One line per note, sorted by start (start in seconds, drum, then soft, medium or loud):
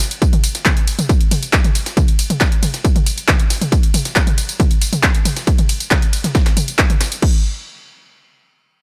0.00 snare medium
0.00 closed hi-hat medium
0.11 closed hi-hat medium
0.11 tambourine soft
0.22 kick loud
0.22 closed hi-hat medium
0.22 tambourine soft
0.33 closed hi-hat medium
0.33 mid tom medium
0.44 closed hi-hat medium
0.44 open hi-hat loud
0.44 ride medium
0.44 tambourine medium
0.55 snare soft
0.55 closed hi-hat medium
0.55 tambourine soft
0.66 kick loud
0.66 snare loud
0.66 clap loud
0.66 closed hi-hat medium
0.66 mid tom medium
0.66 tambourine soft
0.77 closed hi-hat medium
0.87 closed hi-hat medium
0.87 open hi-hat medium
0.87 ride medium
0.87 tambourine medium
0.99 closed hi-hat medium
0.99 mid tom medium
0.99 tambourine soft
1.09 kick loud
1.09 closed hi-hat medium
1.09 tambourine soft
1.21 closed hi-hat soft
1.21 closed hi-hat medium
1.31 open hi-hat medium
1.31 open hi-hat loud
1.31 mid tom medium
1.31 ride medium
1.31 tambourine medium
1.43 closed hi-hat medium
1.43 tambourine soft
1.53 kick loud
1.53 snare loud
1.53 clap loud
1.53 closed hi-hat medium
1.53 tambourine soft
1.64 closed hi-hat medium
1.64 mid tom medium
1.75 closed hi-hat medium
1.75 open hi-hat loud
1.75 ride medium
1.75 tambourine medium
1.86 snare medium
1.86 closed hi-hat medium
1.86 tambourine soft
1.97 kick loud
1.97 closed hi-hat medium
1.97 mid tom medium
1.97 tambourine soft
2.08 closed hi-hat medium
2.19 closed hi-hat medium
2.19 open hi-hat loud
2.19 ride medium
2.19 tambourine medium
2.30 closed hi-hat medium
2.30 mid tom medium
2.30 tambourine soft
2.41 kick loud
2.41 snare loud
2.41 clap loud
2.41 closed hi-hat medium
2.41 tambourine soft
2.52 closed hi-hat medium
2.63 closed hi-hat medium
2.63 open hi-hat medium
2.63 mid tom medium
2.63 ride medium
2.63 tambourine medium
2.74 snare medium
2.74 closed hi-hat medium
2.74 tambourine soft
2.85 kick loud
2.85 closed hi-hat medium
2.85 tambourine soft
2.96 closed hi-hat medium
2.96 mid tom medium
3.06 closed hi-hat medium
3.06 open hi-hat loud
3.06 ride medium
3.06 tambourine medium
3.18 closed hi-hat medium
3.18 tambourine soft
3.28 kick loud
3.28 snare loud
3.28 clap loud
3.28 closed hi-hat medium
3.28 mid tom medium
3.28 tambourine soft
3.40 closed hi-hat soft
3.40 closed hi-hat medium
3.50 snare medium
3.50 closed hi-hat medium
3.50 open hi-hat medium
3.50 ride medium
3.50 tambourine medium
3.61 closed hi-hat medium
3.61 mid tom medium
3.61 tambourine soft
3.72 kick loud
3.72 closed hi-hat medium
3.72 tambourine soft
3.83 closed hi-hat medium
3.94 closed hi-hat medium
3.94 open hi-hat loud
3.94 mid tom medium
3.94 ride medium
3.94 tambourine medium
4.05 snare soft
4.05 closed hi-hat medium
4.05 tambourine soft
4.16 kick loud
4.16 snare loud
4.16 clap loud
4.16 closed hi-hat medium
4.16 tambourine soft
4.27 closed hi-hat medium
4.27 mid tom medium
4.38 closed hi-hat medium
4.38 open hi-hat medium
4.38 ride medium
4.38 tambourine medium
4.49 closed hi-hat medium
4.49 tambourine soft
4.60 kick loud
4.60 closed hi-hat medium
4.60 mid tom medium
4.60 tambourine soft
4.71 closed hi-hat medium
4.71 closed hi-hat soft
4.82 open hi-hat loud
4.82 open hi-hat medium
4.82 ride medium
4.82 tambourine medium
4.93 closed hi-hat medium
4.93 mid tom medium
4.93 tambourine soft
5.03 kick loud
5.03 snare loud
5.03 clap loud
5.03 closed hi-hat medium
5.03 tambourine soft
5.15 closed hi-hat medium
5.25 closed hi-hat medium
5.25 open hi-hat medium
5.25 mid tom medium
5.25 ride medium
5.25 tambourine medium
5.36 snare medium
5.36 closed hi-hat medium
5.36 tambourine soft
5.47 kick loud
5.47 closed hi-hat medium
5.47 tambourine soft
5.58 closed hi-hat medium
5.58 mid tom medium
5.69 closed hi-hat medium
5.69 open hi-hat loud
5.69 ride medium
5.69 tambourine medium
5.80 closed hi-hat medium
5.80 tambourine soft
5.91 kick loud
5.91 snare loud
5.91 clap loud
5.91 closed hi-hat medium
5.91 mid tom medium
5.91 tambourine soft
6.02 closed hi-hat medium
6.13 closed hi-hat medium
6.13 open hi-hat medium
6.13 ride medium
6.13 tambourine medium
6.24 snare soft
6.24 closed hi-hat medium
6.24 mid tom medium
6.24 tambourine soft
6.35 kick loud
6.35 snare loud
6.35 closed hi-hat medium
6.35 tambourine soft
6.46 snare loud
6.46 closed hi-hat medium
6.57 closed hi-hat medium
6.57 open hi-hat loud
6.57 mid tom medium
6.57 ride medium
6.57 tambourine medium
6.68 closed hi-hat medium
6.68 tambourine soft
6.79 kick loud
6.79 snare loud
6.79 clap loud
6.79 closed hi-hat medium
6.79 tambourine soft
6.90 closed hi-hat soft
6.90 closed hi-hat medium
6.90 mid tom medium
7.01 snare loud
7.01 closed hi-hat medium
7.01 open hi-hat medium
7.01 ride medium
7.01 tambourine medium
7.12 closed hi-hat medium
7.12 tambourine soft
7.22 kick loud
7.22 crash medium